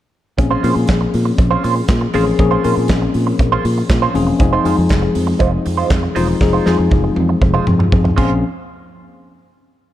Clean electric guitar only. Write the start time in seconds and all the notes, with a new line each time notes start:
0.38 muted clean electric guitar stroke
0.51 G#3 C#4 F4 C5
0.63 G#3 C#4 F4 C5
0.76 muted clean electric guitar stroke
0.89 muted clean electric guitar stroke
1.01 muted clean electric guitar stroke
1.25 muted clean electric guitar stroke
1.38 muted clean electric guitar stroke
1.51 G#3 C#4 F4 C5
1.63 G#3 C#4 F4 C5
1.76 muted clean electric guitar stroke
1.89 muted clean electric guitar stroke
2.01 muted clean electric guitar stroke
2.14 G#3 C#4 F4 C5
2.26 muted clean electric guitar stroke
2.39 muted clean electric guitar stroke
2.51 G#3 C#4 F4 C5
2.63 G#3 C#4 F4 C5
2.76 muted clean electric guitar stroke
2.89 muted clean electric guitar stroke
3.02 muted clean electric guitar stroke
3.27 muted clean electric guitar stroke
3.40 muted clean electric guitar stroke
3.52 G#3 C#4 F4 C5
3.65 muted clean electric guitar stroke
3.78 muted clean electric guitar stroke
3.89 muted clean electric guitar stroke
4.02 G#3 C#4 F4 C5
4.14 muted clean electric guitar stroke
4.27 muted clean electric guitar stroke
4.40 muted clean electric guitar stroke
4.53 G#3 D#4 F4 C5
4.64 G#3 D#4 F4 C5
4.77 muted clean electric guitar stroke
4.90 muted clean electric guitar stroke
5.02 muted clean electric guitar stroke
5.27 muted clean electric guitar stroke
5.39 G#3 D#4 F4 C5
5.52 muted clean electric guitar stroke
5.65 muted clean electric guitar stroke
5.77 G#3 D#4 F4 C5
5.91 muted clean electric guitar stroke
6.03 muted clean electric guitar stroke
6.15 G#3 D#4 F4 C5
6.29 muted clean electric guitar stroke
6.41 muted clean electric guitar stroke
6.53 G#3 D#4 F4 C5
6.66 G#3 D#4 F4 C5
6.79 muted clean electric guitar stroke
6.91 muted clean electric guitar stroke
7.04 muted clean electric guitar stroke
7.29 muted clean electric guitar stroke
7.41 muted clean electric guitar stroke
7.54 G#3 D#4 F4 C5
7.66 muted clean electric guitar stroke
7.79 muted clean electric guitar stroke
7.92 muted clean electric guitar stroke
8.04 muted clean electric guitar stroke
8.16 G#3 C#4 F4 C5